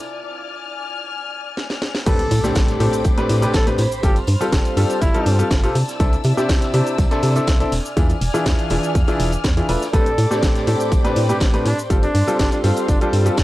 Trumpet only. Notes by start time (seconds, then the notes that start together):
2.07 A4
3.42 G4
3.54 A4
4.03 G4
5.02 E4
9.93 A4
11.29 G4
11.65 D4
12.03 D4
12.39 D4
12.52 D4
12.89 D4
13.01 D4